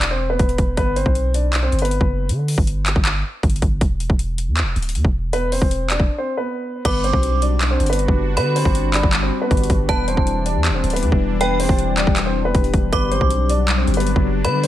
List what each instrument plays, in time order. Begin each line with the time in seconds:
Already playing: 808-style bass E1
0.01 clap, closed hi-hat
0.11 grand piano C4 C5
0.30 grand piano B3 B4
0.39 808-style bass E1, kick, closed hi-hat
0.49 closed hi-hat
0.58 808-style bass E1, kick, closed hi-hat
0.77 808-style bass G1, grand piano B3 B4, kick, closed hi-hat
0.96 grand piano C4 C5, closed hi-hat
1.06 808-style bass B1, kick
1.15 closed hi-hat
1.34 grand piano D4 D5, closed hi-hat
1.53 clap, closed hi-hat
1.63 grand piano C4 C5
1.72 808-style bass G1, closed hi-hat
1.79 grand piano B4, closed hi-hat
1.83 grand piano B3, closed hi-hat
1.91 closed hi-hat
2.01 808-style bass F#1, kick
2.29 808-style bass D3, closed hi-hat
2.48 open hi-hat
2.58 808-style bass G1, kick
2.67 closed hi-hat
2.86 clap, closed hi-hat
2.96 808-style bass G1, kick
3.05 clap, closed hi-hat
3.43 808-style bass G1, kick, closed hi-hat
3.50 closed hi-hat
3.56 closed hi-hat
3.62 808-style bass G1, kick, closed hi-hat
3.81 808-style bass E1, kick, closed hi-hat
4.00 closed hi-hat
4.10 808-style bass E1, kick
4.19 closed hi-hat
4.38 closed hi-hat
4.48 808-style bass E2
4.57 clap, closed hi-hat
4.62 808-style bass E1
4.76 808-style bass D1, closed hi-hat
4.82 closed hi-hat
4.89 closed hi-hat
4.95 808-style bass E2, closed hi-hat
5.05 808-style bass E1, kick
5.33 grand piano B3 B4, closed hi-hat
5.52 grand piano C4 C5, open hi-hat
5.62 808-style bass E1, kick
5.71 closed hi-hat
5.90 grand piano D4 D5, clap, closed hi-hat
6.00 808-style bass E1, kick
6.18 grand piano C4 C5
6.37 grand piano B3 B4
6.85 808-style bass G1, analog synth pad G3 D4 F#4, grand piano B3 B4, synth bell D6, kick, closed hi-hat, crash
7.04 grand piano C4 C5, closed hi-hat
7.13 808-style bass B1, kick
7.23 closed hi-hat
7.42 grand piano D4 D5, closed hi-hat
7.61 clap, closed hi-hat
7.71 grand piano C4 C5
7.80 808-style bass G1, closed hi-hat
7.86 grand piano B4, closed hi-hat
7.90 grand piano B3, closed hi-hat
7.99 closed hi-hat
8.08 808-style bass F#1, kick
8.37 808-style bass D3, grand piano B3 B4, synth bell B5, closed hi-hat
8.56 grand piano C4 C5, open hi-hat
8.65 808-style bass G1, kick
8.75 closed hi-hat
8.94 grand piano D4 D5, clap, closed hi-hat
9.03 808-style bass G1, kick
9.13 clap, closed hi-hat
9.23 grand piano C4 C5
9.41 grand piano B3 B4
9.51 808-style bass G1, kick, closed hi-hat
9.57 closed hi-hat
9.63 closed hi-hat
9.70 808-style bass G1, kick, closed hi-hat
9.89 808-style bass E1, analog synth pad E3 D4, grand piano B3 B4, synth bell A5, kick, closed hi-hat
10.08 grand piano C4 C5, closed hi-hat
10.17 808-style bass E1, kick
10.27 closed hi-hat
10.46 grand piano D4 D5, closed hi-hat
10.55 808-style bass E2
10.65 clap, closed hi-hat
10.69 808-style bass E1
10.74 grand piano C4 C5
10.84 808-style bass D1, closed hi-hat
10.90 grand piano B4, closed hi-hat
10.94 grand piano B3, closed hi-hat
11.03 808-style bass E2, closed hi-hat
11.12 808-style bass E1, kick
11.41 grand piano B3 B4, synth bell G5, closed hi-hat
11.60 grand piano C4 C5, open hi-hat
11.69 808-style bass E1, kick
11.79 closed hi-hat
11.98 grand piano D4 D5, clap, closed hi-hat
12.07 808-style bass E1, kick
12.16 clap, closed hi-hat
12.26 grand piano C4 C5
12.45 grand piano B3 B4
12.55 808-style bass E1, kick, closed hi-hat
12.64 closed hi-hat
12.74 808-style bass E1, kick, closed hi-hat
12.93 808-style bass G1, analog synth pad F#3 D4, grand piano B3 B4, synth bell D6, kick, closed hi-hat
13.11 grand piano C4 C5, closed hi-hat
13.21 808-style bass B1, kick
13.30 closed hi-hat
13.49 grand piano D4 D5, closed hi-hat
13.68 clap, closed hi-hat
13.78 grand piano C4 C5
13.87 808-style bass G1, closed hi-hat
13.94 grand piano B4, closed hi-hat
13.98 grand piano B3, closed hi-hat
14.07 closed hi-hat
14.16 808-style bass F#1, kick
14.45 808-style bass D3, grand piano B3 B4, synth bell B5, closed hi-hat
14.63 grand piano C5, open hi-hat